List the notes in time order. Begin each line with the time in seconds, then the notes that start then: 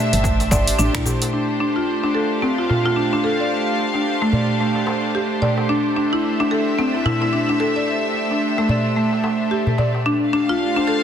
Already playing: A3 D4 G4 C5 D5 E5
0.13 G1, open hi-hat, cabasa
0.24 A3, kick, cabasa
0.40 open hi-hat, darbuka ka, cabasa
0.51 G1 D5, kick, darbuka tek, cabasa
0.67 open hi-hat, cabasa
0.79 A1 D4, cabasa
0.95 E4, finger snap, kick, open hi-hat, darbuka dum, cabasa
1.06 G4, darbuka ka, darbuka dum, cabasa
1.22 open hi-hat, darbuka ka, cabasa
1.33 D4
1.60 D4
1.76 F4
2.03 D4, darbuka ka
2.11 A4 F5
2.42 C4, darbuka ka
2.58 F4, darbuka tek
2.69 F4, darbuka ka, darbuka dum
2.85 F4, darbuka tek
2.96 D4
3.13 D4, darbuka ka
3.24 A4
3.40 D5
3.79 darbuka ka
3.94 D4, darbuka tek
4.21 A3, darbuka ka, darbuka tek
4.33 D5, darbuka dum
4.61 A3
4.75 darbuka ka
4.87 darbuka tek
5.15 G4
5.42 D5, darbuka ka, darbuka dum
5.57 darbuka ka
5.69 D4
5.97 D4
6.08 E5
6.13 E4
6.40 D4, darbuka ka
6.51 A4
6.79 C4, darbuka ka
6.94 E4, darbuka tek
7.06 E4, darbuka ka, darbuka dum
7.21 E4, darbuka tek
7.33 D4
7.49 D4, darbuka ka
7.60 A4
7.76 D5
8.14 darbuka ka
8.31 D4, darbuka tek
8.57 A3, darbuka ka, darbuka tek
8.69 D5, darbuka dum
8.97 A3
9.13 darbuka ka
9.24 darbuka tek
9.51 G4
9.67 darbuka dum
9.78 D5, darbuka ka, darbuka dum
9.95 darbuka ka
10.06 D4
10.27 D4 F5
10.33 D4 G4
10.49 F4
10.72 C5
10.76 D4, darbuka ka
10.88 A4